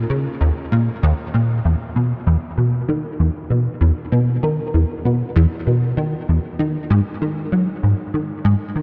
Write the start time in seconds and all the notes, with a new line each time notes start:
0.10 C#3
0.41 D#2
0.72 A#2
1.03 D#2
1.34 A#2
1.65 E2
1.96 B2
2.27 E2
2.58 B2
2.88 D#3
3.19 E2
3.50 B2
3.81 E2
4.12 B2
4.43 D#3
4.74 E2
5.05 B2
5.36 E2
5.67 B2
5.97 D#3
6.29 E2
6.59 D#3
6.90 G#2
7.22 D#3
7.52 F#3
7.83 G#2
8.14 D#3
8.44 G#2
8.76 D#3